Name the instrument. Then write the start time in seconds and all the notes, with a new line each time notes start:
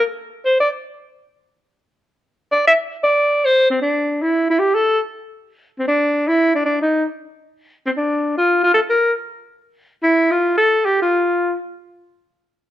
alto saxophone
0.45 C5
0.60 D5
2.51 D5
2.67 E5
3.03 D5
3.45 C5
3.70 C4
3.82 D4
4.22 E4
4.50 E4
4.59 G4
4.75 A4
5.79 C4
5.88 D4
6.28 E4
6.55 D4
6.65 D4
6.82 D#4
7.86 C4
7.97 D4
8.38 F4
8.64 F4
8.74 A4
8.89 A#4
10.03 E4
10.31 F4
10.57 A4
10.85 G4
11.02 F4